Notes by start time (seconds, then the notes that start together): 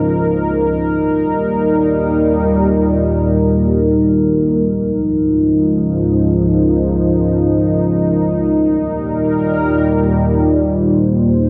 Already playing: C#2 G#2 F3 D#4 A#4
0.78 D#2 A#2 G3 D#4
4.66 C#2 G#2 F3 D#4
8.53 D#2 A#2 G3 A#4
10.46 C5